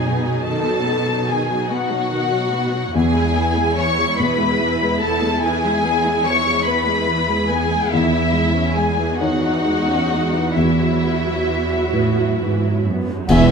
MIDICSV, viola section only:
0, 0, Header, 1, 2, 480
1, 0, Start_track
1, 0, Key_signature, 4, "major"
1, 0, Tempo, 829876
1, 265, Time_signature, 6, 3, 24, 8
1, 5064, Tempo, 877193
1, 5544, Tempo, 913242
1, 7584, End_track
2, 0, Start_track
2, 0, Title_t, "Viola section"
2, 0, Program_c, 0, 48
2, 0, Note_on_c, 0, 63, 42
2, 39, Note_on_c, 0, 59, 42
2, 152, Note_off_c, 0, 59, 0
2, 152, Note_on_c, 0, 54, 38
2, 269, Note_off_c, 0, 54, 0
2, 274, Note_on_c, 0, 51, 43
2, 382, Note_off_c, 0, 51, 0
2, 384, Note_on_c, 0, 54, 40
2, 502, Note_on_c, 0, 59, 39
2, 505, Note_off_c, 0, 54, 0
2, 624, Note_off_c, 0, 59, 0
2, 624, Note_on_c, 0, 54, 42
2, 741, Note_on_c, 0, 51, 42
2, 744, Note_off_c, 0, 54, 0
2, 857, Note_on_c, 0, 54, 42
2, 863, Note_off_c, 0, 51, 0
2, 980, Note_off_c, 0, 54, 0
2, 982, Note_on_c, 0, 59, 46
2, 1101, Note_on_c, 0, 54, 45
2, 1102, Note_off_c, 0, 59, 0
2, 1211, Note_on_c, 0, 51, 40
2, 1221, Note_off_c, 0, 54, 0
2, 1335, Note_on_c, 0, 54, 40
2, 1336, Note_off_c, 0, 51, 0
2, 1452, Note_on_c, 0, 59, 44
2, 1458, Note_off_c, 0, 54, 0
2, 1568, Note_on_c, 0, 54, 43
2, 1577, Note_off_c, 0, 59, 0
2, 1696, Note_off_c, 0, 54, 0
2, 1696, Note_on_c, 0, 64, 53
2, 1697, Note_on_c, 0, 52, 52
2, 1699, Note_off_c, 0, 63, 0
2, 1813, Note_off_c, 0, 52, 0
2, 1816, Note_on_c, 0, 56, 46
2, 1941, Note_off_c, 0, 56, 0
2, 1941, Note_on_c, 0, 59, 47
2, 2059, Note_on_c, 0, 56, 42
2, 2063, Note_off_c, 0, 59, 0
2, 2180, Note_on_c, 0, 52, 45
2, 2182, Note_off_c, 0, 56, 0
2, 2302, Note_off_c, 0, 52, 0
2, 2303, Note_on_c, 0, 56, 45
2, 2420, Note_on_c, 0, 59, 52
2, 2422, Note_off_c, 0, 56, 0
2, 2540, Note_off_c, 0, 59, 0
2, 2540, Note_on_c, 0, 56, 45
2, 2656, Note_on_c, 0, 52, 48
2, 2659, Note_off_c, 0, 56, 0
2, 2776, Note_off_c, 0, 52, 0
2, 2783, Note_on_c, 0, 56, 46
2, 2893, Note_on_c, 0, 59, 52
2, 2898, Note_off_c, 0, 56, 0
2, 3013, Note_off_c, 0, 59, 0
2, 3014, Note_on_c, 0, 56, 44
2, 3131, Note_on_c, 0, 52, 54
2, 3134, Note_off_c, 0, 56, 0
2, 3244, Note_off_c, 0, 52, 0
2, 3261, Note_on_c, 0, 56, 48
2, 3371, Note_on_c, 0, 59, 46
2, 3378, Note_off_c, 0, 56, 0
2, 3494, Note_off_c, 0, 59, 0
2, 3495, Note_on_c, 0, 56, 44
2, 3612, Note_on_c, 0, 52, 44
2, 3617, Note_off_c, 0, 56, 0
2, 3736, Note_off_c, 0, 52, 0
2, 3736, Note_on_c, 0, 56, 50
2, 3854, Note_on_c, 0, 59, 50
2, 3858, Note_off_c, 0, 56, 0
2, 3972, Note_on_c, 0, 56, 49
2, 3977, Note_off_c, 0, 59, 0
2, 4096, Note_off_c, 0, 56, 0
2, 4099, Note_on_c, 0, 52, 48
2, 4217, Note_on_c, 0, 56, 48
2, 4220, Note_off_c, 0, 52, 0
2, 4326, Note_on_c, 0, 59, 50
2, 4338, Note_off_c, 0, 56, 0
2, 4453, Note_off_c, 0, 59, 0
2, 4453, Note_on_c, 0, 56, 45
2, 4575, Note_on_c, 0, 51, 50
2, 4576, Note_off_c, 0, 56, 0
2, 4689, Note_off_c, 0, 51, 0
2, 4694, Note_on_c, 0, 52, 44
2, 4818, Note_off_c, 0, 52, 0
2, 4818, Note_on_c, 0, 56, 48
2, 4937, Note_on_c, 0, 61, 47
2, 4942, Note_off_c, 0, 56, 0
2, 5064, Note_off_c, 0, 61, 0
2, 5067, Note_on_c, 0, 56, 42
2, 5183, Note_on_c, 0, 52, 38
2, 5186, Note_off_c, 0, 56, 0
2, 5279, Note_off_c, 0, 64, 0
2, 5299, Note_on_c, 0, 51, 44
2, 5301, Note_on_c, 0, 63, 51
2, 5304, Note_off_c, 0, 52, 0
2, 5421, Note_on_c, 0, 52, 39
2, 5422, Note_off_c, 0, 51, 0
2, 5545, Note_off_c, 0, 52, 0
2, 5554, Note_on_c, 0, 56, 42
2, 5668, Note_off_c, 0, 56, 0
2, 5674, Note_on_c, 0, 61, 39
2, 5789, Note_off_c, 0, 61, 0
2, 5793, Note_on_c, 0, 56, 41
2, 5910, Note_off_c, 0, 56, 0
2, 5913, Note_on_c, 0, 52, 36
2, 6026, Note_off_c, 0, 63, 0
2, 6031, Note_off_c, 0, 52, 0
2, 6035, Note_on_c, 0, 66, 46
2, 6039, Note_on_c, 0, 52, 41
2, 6147, Note_off_c, 0, 52, 0
2, 6156, Note_on_c, 0, 54, 41
2, 6274, Note_off_c, 0, 54, 0
2, 6276, Note_on_c, 0, 59, 37
2, 6394, Note_off_c, 0, 59, 0
2, 6403, Note_on_c, 0, 54, 36
2, 6517, Note_off_c, 0, 54, 0
2, 6526, Note_on_c, 0, 52, 38
2, 6637, Note_off_c, 0, 52, 0
2, 6650, Note_on_c, 0, 54, 38
2, 6759, Note_off_c, 0, 54, 0
2, 6765, Note_on_c, 0, 59, 44
2, 6876, Note_off_c, 0, 59, 0
2, 6882, Note_on_c, 0, 54, 37
2, 6995, Note_off_c, 0, 54, 0
2, 7006, Note_on_c, 0, 52, 39
2, 7118, Note_off_c, 0, 52, 0
2, 7131, Note_on_c, 0, 54, 35
2, 7241, Note_off_c, 0, 54, 0
2, 7248, Note_on_c, 0, 59, 40
2, 7360, Note_off_c, 0, 59, 0
2, 7362, Note_off_c, 0, 66, 0
2, 7375, Note_on_c, 0, 54, 43
2, 7481, Note_off_c, 0, 54, 0
2, 7486, Note_on_c, 0, 59, 64
2, 7584, Note_off_c, 0, 59, 0
2, 7584, End_track
0, 0, End_of_file